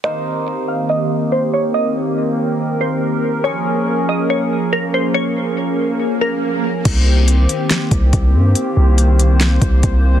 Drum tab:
CC |--------|--------|--------|--------|
HH |--------|--------|--------|--------|
SD |--------|--------|--------|--------|
BD |--------|--------|--------|--------|

CC |x-------|--------|
HH |x-xxxxx-|x-xxxxx-|
SD |----o---|----o---|
BD |o----oo-|-----oo-|